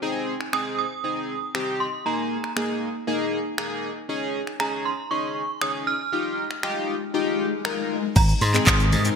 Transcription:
0.02 C4 D#4 G#4
0.41 finger snap
0.53 C4 D#4 G#4 D#6, finger snap
0.79 D#6
1.04 C4 D#4 G#4
1.55 C4 D#4 G4, finger snap
1.80 C6
2.06 A#3 D#4 G#4 A#5
2.44 finger snap
2.56 A#3 D#4 G#4, finger snap
3.07 A#3 D#4 G#4
3.58 A#3 D#4 G#4, finger snap
4.09 C#4 D#4 G#4
4.47 finger snap
4.60 C#4 D#4 G#4 A#5, finger snap
4.85 C6
5.11 C#4 D#4 G#4 C#6
5.61 C#4 D#4 G#4 D#6, finger snap
5.87 F6
6.12 D#4 F4 G4, swell
6.51 finger snap
6.63 D#4 F4 G4, finger snap
7.14 D#4 F4 G4
7.65 D#4 F4 A#4, finger snap
8.16 G#1 C3 D#3 G#3 D#4 A#5, kick, closed hi-hat, crash, shaker
8.29 shaker
8.41 G#2 C6, open hi-hat, shaker
8.54 G#3 C4 D#4 G#4, clap, shaker
8.66 G#1 D#6, kick, clap, closed hi-hat, shaker
8.80 shaker
8.92 G#2, open hi-hat, shaker
9.04 G#3 C4 D#4 A#4, shaker

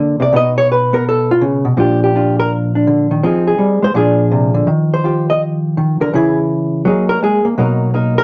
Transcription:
Already playing: D3 A#3 D4
0.20 C3 D5
0.33 B2 B3 D#4 D#5
0.58 C#5
0.72 B4
0.93 B3 A#4
1.09 A4
1.31 F4
1.41 C#3
1.65 B2
1.77 A#2 F3 D4 F4 G4
2.04 G4
2.15 D4 F4
2.40 A#4
2.75 D4
2.87 D3
3.11 D#3
3.23 F3 C4 D#4 G#4
3.47 G#4
3.58 G3
3.82 G#3 C5
3.94 A#2 F3 D4 F4 G#4
4.31 C3
4.54 D3
4.67 D#3
4.94 C5
5.04 F4 G4
5.30 D#5
5.77 D#3
6.01 D3 A#4
6.13 C#3 E3 E4 G#4
6.85 F#3 A#3 D#4 G#4
7.09 A#4
7.22 G#3 G#4
7.45 A#3
7.58 B2 F#3 A#3 D#4 A#4
7.94 A#3 D#4 A#4
8.18 A#4

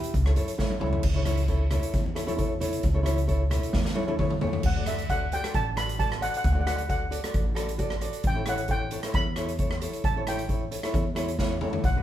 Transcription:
Already playing: E4 G4 B4
0.03 closed hi-hat
0.14 C#2, kick, closed hi-hat
0.26 E4 A4 C#5, cross-stick
0.36 F#2 E4 A4 C#5, closed hi-hat
0.48 closed hi-hat
0.58 E2 E4 A4 C#5, kick, snare
0.70 high tom
0.80 C#2 E4 A4 C#5, mid tom, low conga
0.93 floor tom, high conga
1.03 C#2, kick, crash
1.14 E4 A4 C#5
1.25 E4 A4 C#5, cross-stick, closed hi-hat, high conga
1.37 closed hi-hat
1.48 E4 A4 C#5, kick, closed hi-hat
1.71 E4 A4 C#5, cross-stick, closed hi-hat, low conga
1.83 closed hi-hat
1.94 E2, kick, closed hi-hat, low conga
2.06 high conga
2.15 E4 A4 C#5, cross-stick, closed hi-hat
2.27 E4 A4 C#5, closed hi-hat, high conga
2.36 E4 A4 C#5, kick, closed hi-hat
2.60 E4 A4 C#5, closed hi-hat, low conga
2.73 closed hi-hat
2.83 C#2, kick, closed hi-hat
2.94 E4 A4 C#5
3.03 E4 A4 C#5, cross-stick, closed hi-hat, high conga
3.18 closed hi-hat
3.27 E4 A4 C#5, kick, closed hi-hat
3.50 E4 A4 C#5, cross-stick, closed hi-hat, low conga
3.63 closed hi-hat
3.73 E2, kick, snare, low conga
3.85 snare, high conga
3.95 E4 A4 C#5, high tom
4.07 E4 A4 C#5, high tom, high conga
4.18 E4 A4 C#5, kick, mid tom
4.30 mid tom
4.41 E4 A4 C#5, floor tom, low conga
4.53 floor tom
4.63 D2 F#5, kick, crash
4.76 F#4 A4 D5
4.86 F#4 A4 D5 E5, cross-stick, closed hi-hat
4.98 closed hi-hat
5.09 F#4 A4 D5 F#5, kick, closed hi-hat
5.32 F#4 A4 D5 G5, closed hi-hat
5.43 F#4 A4 D5, cross-stick, closed hi-hat
5.54 A1 A5, kick, closed hi-hat
5.76 F#4 A4 D5 B5, cross-stick, closed hi-hat
5.89 closed hi-hat
5.98 F#4 A4 D5 A5, kick, closed hi-hat
6.12 cross-stick
6.20 F#4 A4 D5 F#5, closed hi-hat
6.29 F#5
6.34 F#5, closed hi-hat
6.44 D2 F#5, kick, closed hi-hat
6.52 F#4 A4 D5 F#5
6.61 F#5
6.66 F#4 A4 D5 F#5, cross-stick, closed hi-hat
6.76 F#5, closed hi-hat
6.88 F#4 A4 D5 F#5, kick, closed hi-hat
7.11 F#4 A4 D5, closed hi-hat
7.24 F#4 A4 D5, cross-stick, closed hi-hat
7.34 A1, kick, closed hi-hat
7.55 F#4 A4 D5, cross-stick, closed hi-hat
7.69 closed hi-hat
7.78 F#4 A4 D5, kick, closed hi-hat
7.90 cross-stick
8.01 F#4 A4 D5, closed hi-hat
8.13 closed hi-hat
8.23 A1 G5, kick, closed hi-hat
8.35 E4 A4 C#5
8.46 E4 A4 C#5 F#5, cross-stick, closed hi-hat
8.57 closed hi-hat
8.68 E4 A4 C#5 G5, kick, closed hi-hat
8.91 E4 A4 C#5, closed hi-hat
9.03 E4 A4 C#5, cross-stick, closed hi-hat
9.14 E2 B5, kick, closed hi-hat
9.36 E4 A4 C#5, cross-stick, closed hi-hat
9.48 closed hi-hat
9.59 E4 A4 C#5, kick, closed hi-hat
9.71 cross-stick
9.81 E4 A4 C#5, closed hi-hat
9.93 closed hi-hat
10.04 A1 A5, kick, closed hi-hat
10.16 E4 A4 C#5
10.27 E4 A4 C#5 G5, cross-stick, closed hi-hat
10.39 closed hi-hat
10.49 E4 A4 C#5, kick, closed hi-hat
10.71 E4 A4 C#5, closed hi-hat
10.83 E4 A4 C#5, cross-stick, closed hi-hat
10.94 E2, kick, closed hi-hat
11.15 E4 A4 C#5, cross-stick, closed hi-hat
11.28 closed hi-hat
11.39 E4 A4 C#5, kick, snare
11.61 E4 A4 C#5, mid tom
11.73 floor tom
11.83 B1 F#5, kick, closed hi-hat
11.96 D4 F#4 B4

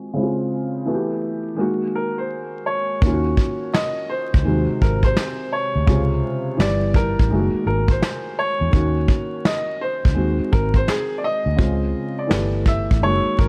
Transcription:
Already playing: D#3 G#3 C4 F#4
0.13 C#3 G#3 C4 E4
0.23 F4
0.86 E3 A3 B3 F#4
0.94 G4
1.55 D#3 G#3 A#3
1.60 F#4
1.95 A#4
2.18 C5
2.66 C#5
3.02 D#2 D#3 A#3 C#4, kick
3.07 F4
3.13 F#4
3.37 kick
3.73 D#5, snare
4.09 C5
4.34 C#2, kick
4.43 D#2 C3 D#3 G#3
4.48 F#4
4.68 muted fingered electric bass stroke
4.82 G#1 A#4, kick
5.03 C5, kick
5.17 snare
5.52 C#5
5.76 D2
5.87 C#2 C3 C#3 G#3 F4, kick
6.57 G1 E3 G3 B3 G4 D5, snare
6.94 A#4, kick
7.19 A1, kick
7.28 F#1 D#3 G#3
7.32 A3 F#4
7.39 A#3
7.54 muted fingered electric bass stroke
7.66 G#1 A#4
7.88 C5, kick
8.03 snare
8.39 C#5
8.61 E2
8.70 D#2 D#3 A#3 C#4, kick
8.75 F#4
9.08 kick
9.45 D#5, snare
9.81 C5
10.05 C#2, kick
10.12 D#3 G#3 C4
10.17 D#2 F#4
10.40 muted fingered electric bass stroke
10.52 G#1 A#4, kick
10.74 C5, kick
10.88 G#4, snare
11.18 D5
11.24 D#5
11.46 D2
11.56 C#3 G#3 C4 F4, kick
12.19 D5
12.27 G1 E3 A3 B3 G4, snare
12.66 E5, kick, snare
12.91 A1, kick
12.99 F#1 D#3 G#3 A#3 C#5
13.05 F#4
13.39 G#1 A#4, kick

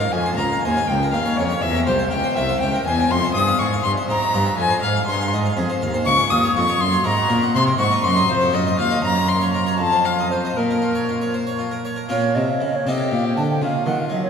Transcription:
Already playing: G#2 F5
0.00 A#4
0.12 F2 G#5
0.26 C5
0.37 C#2 F4 A#5
0.52 F5
0.63 D#2 C5 G#5
0.77 F5
0.87 C#2 G5
1.03 A#4
1.12 D#2 F4 F5
1.25 C#5
1.37 F2 F4 C#5
1.50 C#5
1.62 E2 E5
1.75 A#4
1.86 C2 G4 C5
1.99 C5
2.11 C#2 G4 G5
2.24 C5
2.36 C2 A#4 E5
2.49 C5
2.60 C#2 G4 G5
2.74 A#4
2.86 E2 C5 G#5
3.00 A#4
3.11 F2 C6
3.24 C5
3.35 G2 G#4 D#6
3.47 F5
3.59 G#2 G#4 C#6
3.73 F5
3.83 G2 C6
3.97 C5
4.09 G#2 G4 A#5
4.22 E5
4.34 G2 G4
4.45 E5
4.57 F2 G#5
4.70 C5
4.82 G#2 G#4 F5
4.96 F5
5.07 G2 G#4 C6
5.21 F5
5.32 G#2 D#5
5.45 F5
5.57 F2 G#4
5.70 C5
5.81 D#2 F5
5.94 C5
6.05 C#2 C#6
6.18 G#4
6.30 D#2 F4 D#6
6.43 C#5
6.55 F2 F4 C#6
6.68 C#5
6.79 F#2 C6
6.92 C#5
7.04 G#2 A#4 A#5
7.17 F#5
7.29 A#2 A#4
7.42 F#5
7.55 C3 C6
7.67 A#4
7.78 G#2 F#4 C#6
7.91 D#5
8.04 F#2 F#4 C6
8.16 D#5
8.28 F2 C5
8.41 A4
8.52 F#2 F4 D#5
8.67 D#5
8.79 D#2 F4 F5
8.90 D#5
9.03 F#2 A#5
9.15 C#5
9.27 A#4 C6
9.41 C#5
9.53 A#4 A#5
9.66 C#5
9.78 F2 A5
9.92 C5
10.05 F4 F5
10.19 D#5
10.31 F4 C5
10.45 D#5
10.56 A#2 A#4
10.71 A#4
10.82 F4
10.95 C#5
11.09 F4
11.21 C#5
11.34 C5
11.47 C#5
11.59 F4
11.71 A#4
11.85 C#5
11.96 A#4
12.09 A#2 C#4 F4 A#4 C#5
12.35 C3 D#5
12.50 F5
12.60 C#3 D#5
12.76 C#5
12.86 C3 C4 D#4 G4 A4 D#5
13.11 A#2 F5
13.25 G5
13.36 D3 A5
13.50 G5
13.62 C#3 F4 F5
13.86 D#3 F#5
14.01 F5
14.10 F#3 D#5
14.23 C#5

